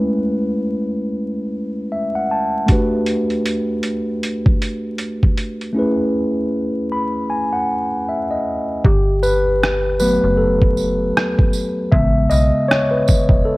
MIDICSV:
0, 0, Header, 1, 4, 480
1, 0, Start_track
1, 0, Key_signature, 1, "major"
1, 0, Tempo, 769231
1, 1679, Time_signature, 4, 2, 24, 8
1, 8468, End_track
2, 0, Start_track
2, 0, Title_t, "Tine electric piano"
2, 0, Program_c, 0, 4
2, 0, Control_c, 0, 64, 127
2, 0, Note_on_c, 0, 56, 58
2, 0, Note_on_c, 0, 57, 64
2, 0, Note_on_c, 0, 61, 60
2, 0, Note_on_c, 0, 64, 57
2, 0, Note_on_c, 0, 71, 75
2, 1198, Note_on_c, 0, 76, 64
2, 1331, Note_off_c, 0, 76, 0
2, 1344, Note_on_c, 0, 78, 71
2, 1433, Note_off_c, 0, 78, 0
2, 1443, Note_on_c, 0, 81, 68
2, 1640, Note_off_c, 0, 57, 0
2, 1645, Note_off_c, 0, 61, 0
2, 1649, Note_off_c, 0, 64, 0
2, 1654, Note_off_c, 0, 56, 0
2, 1659, Note_off_c, 0, 71, 0
2, 1662, Note_on_c, 0, 57, 73
2, 1664, Note_off_c, 0, 81, 0
2, 1671, Note_on_c, 0, 62, 62
2, 1680, Note_on_c, 0, 66, 65
2, 1687, Control_c, 0, 64, 0
2, 1690, Note_on_c, 0, 67, 57
2, 1698, Note_on_c, 0, 71, 71
2, 1784, Control_c, 0, 64, 127
2, 3566, Note_off_c, 0, 57, 0
2, 3570, Note_off_c, 0, 62, 0
2, 3575, Note_off_c, 0, 66, 0
2, 3575, Note_on_c, 0, 57, 66
2, 3580, Note_off_c, 0, 67, 0
2, 3584, Note_off_c, 0, 71, 0
2, 3585, Note_on_c, 0, 61, 62
2, 3595, Note_on_c, 0, 64, 62
2, 3603, Note_on_c, 0, 68, 51
2, 3607, Control_c, 0, 64, 0
2, 3613, Note_on_c, 0, 71, 69
2, 3716, Control_c, 0, 64, 127
2, 4318, Note_on_c, 0, 83, 68
2, 4542, Note_off_c, 0, 83, 0
2, 4554, Note_on_c, 0, 80, 68
2, 4689, Note_off_c, 0, 80, 0
2, 4696, Note_on_c, 0, 78, 72
2, 5012, Note_off_c, 0, 78, 0
2, 5046, Note_on_c, 0, 76, 61
2, 5176, Note_off_c, 0, 76, 0
2, 5183, Note_on_c, 0, 75, 65
2, 5482, Note_off_c, 0, 57, 0
2, 5487, Note_off_c, 0, 61, 0
2, 5492, Note_off_c, 0, 64, 0
2, 5496, Note_off_c, 0, 68, 0
2, 5496, Note_off_c, 0, 75, 0
2, 5501, Note_off_c, 0, 71, 0
2, 5521, Note_on_c, 0, 67, 97
2, 5526, Control_c, 0, 64, 0
2, 5630, Control_c, 0, 64, 127
2, 5758, Note_on_c, 0, 71, 113
2, 5767, Note_off_c, 0, 67, 0
2, 6231, Note_off_c, 0, 71, 0
2, 6238, Note_on_c, 0, 71, 99
2, 6240, Note_on_c, 0, 54, 55
2, 6244, Note_on_c, 0, 57, 51
2, 6248, Note_on_c, 0, 59, 59
2, 6474, Note_on_c, 0, 69, 79
2, 6486, Note_off_c, 0, 71, 0
2, 7171, Note_off_c, 0, 69, 0
2, 7414, Note_off_c, 0, 54, 0
2, 7417, Note_off_c, 0, 57, 0
2, 7419, Note_off_c, 0, 59, 0
2, 7436, Note_on_c, 0, 76, 98
2, 7439, Note_on_c, 0, 49, 49
2, 7442, Note_on_c, 0, 56, 45
2, 7445, Note_on_c, 0, 59, 54
2, 7447, Control_c, 0, 64, 0
2, 7547, Control_c, 0, 64, 127
2, 7673, Note_on_c, 0, 75, 113
2, 7685, Note_off_c, 0, 76, 0
2, 7783, Note_off_c, 0, 75, 0
2, 7915, Note_on_c, 0, 73, 104
2, 8055, Note_on_c, 0, 71, 79
2, 8064, Note_off_c, 0, 73, 0
2, 8134, Note_off_c, 0, 49, 0
2, 8136, Note_off_c, 0, 56, 0
2, 8137, Note_off_c, 0, 59, 0
2, 8393, Note_on_c, 0, 69, 87
2, 8406, Note_off_c, 0, 71, 0
2, 8468, Note_off_c, 0, 69, 0
2, 8468, End_track
3, 0, Start_track
3, 0, Title_t, "FM bass"
3, 0, Program_c, 1, 39
3, 5523, Note_on_c, 1, 31, 115
3, 6359, Note_off_c, 1, 31, 0
3, 6389, Note_on_c, 1, 30, 87
3, 6938, Note_off_c, 1, 30, 0
3, 7443, Note_on_c, 1, 33, 114
3, 7659, Note_off_c, 1, 33, 0
3, 7684, Note_on_c, 1, 35, 95
3, 7811, Note_off_c, 1, 35, 0
3, 8295, Note_on_c, 1, 28, 81
3, 8386, Note_off_c, 1, 28, 0
3, 8468, End_track
4, 0, Start_track
4, 0, Title_t, "Drums"
4, 1674, Note_on_c, 9, 42, 63
4, 1677, Note_on_c, 9, 36, 83
4, 1736, Note_off_c, 9, 42, 0
4, 1740, Note_off_c, 9, 36, 0
4, 1911, Note_on_c, 9, 42, 57
4, 1974, Note_off_c, 9, 42, 0
4, 2060, Note_on_c, 9, 42, 32
4, 2123, Note_off_c, 9, 42, 0
4, 2157, Note_on_c, 9, 42, 77
4, 2219, Note_off_c, 9, 42, 0
4, 2389, Note_on_c, 9, 42, 67
4, 2452, Note_off_c, 9, 42, 0
4, 2640, Note_on_c, 9, 42, 68
4, 2703, Note_off_c, 9, 42, 0
4, 2783, Note_on_c, 9, 36, 88
4, 2845, Note_off_c, 9, 36, 0
4, 2882, Note_on_c, 9, 42, 72
4, 2944, Note_off_c, 9, 42, 0
4, 3110, Note_on_c, 9, 42, 64
4, 3172, Note_off_c, 9, 42, 0
4, 3263, Note_on_c, 9, 36, 70
4, 3325, Note_off_c, 9, 36, 0
4, 3354, Note_on_c, 9, 42, 58
4, 3417, Note_off_c, 9, 42, 0
4, 3502, Note_on_c, 9, 42, 30
4, 3565, Note_off_c, 9, 42, 0
4, 5520, Note_on_c, 9, 36, 87
4, 5582, Note_off_c, 9, 36, 0
4, 5761, Note_on_c, 9, 54, 47
4, 5823, Note_off_c, 9, 54, 0
4, 6012, Note_on_c, 9, 37, 92
4, 6074, Note_off_c, 9, 37, 0
4, 6237, Note_on_c, 9, 54, 78
4, 6299, Note_off_c, 9, 54, 0
4, 6624, Note_on_c, 9, 36, 79
4, 6687, Note_off_c, 9, 36, 0
4, 6721, Note_on_c, 9, 54, 47
4, 6784, Note_off_c, 9, 54, 0
4, 6971, Note_on_c, 9, 37, 99
4, 7033, Note_off_c, 9, 37, 0
4, 7105, Note_on_c, 9, 36, 85
4, 7167, Note_off_c, 9, 36, 0
4, 7195, Note_on_c, 9, 54, 58
4, 7258, Note_off_c, 9, 54, 0
4, 7440, Note_on_c, 9, 36, 101
4, 7502, Note_off_c, 9, 36, 0
4, 7679, Note_on_c, 9, 54, 47
4, 7742, Note_off_c, 9, 54, 0
4, 7933, Note_on_c, 9, 37, 97
4, 7995, Note_off_c, 9, 37, 0
4, 8160, Note_on_c, 9, 54, 70
4, 8166, Note_on_c, 9, 36, 84
4, 8222, Note_off_c, 9, 54, 0
4, 8229, Note_off_c, 9, 36, 0
4, 8293, Note_on_c, 9, 36, 92
4, 8355, Note_off_c, 9, 36, 0
4, 8468, End_track
0, 0, End_of_file